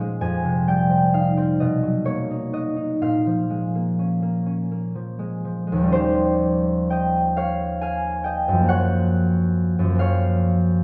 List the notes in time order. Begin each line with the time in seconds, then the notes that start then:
Already playing: A#2 F3 C#4 D#4 F4 C#5 F5 G#5
0.00 G#3
0.21 F2 G#5
0.44 C3
0.67 G3 G5
0.89 C4
1.13 D#4 F5
1.37 C4
1.60 B2 D#5
1.83 F#3
2.05 A#3 C#5
2.30 D#4
2.53 F#4 D#5
2.76 D#4
3.01 A#2 F5
3.27 F3
3.50 G#3
3.75 A#3
3.99 C#4
4.22 A#3
4.46 C#4
4.71 A#3
4.95 F3
5.19 G#3
5.45 F3
5.67 G#3
5.72 D#2
5.77 F3
5.83 G3
5.87 C#4
5.92 G4 C5
6.90 D#5 G5
7.37 C#5 F5
7.81 F5 G#5
8.24 D#5 G5
8.48 F#2
8.53 F3
8.59 A#3
8.63 C4
8.69 C#5 F#5
9.79 F#2
9.84 F3
9.89 A#3
9.95 C4
9.99 C#5 F5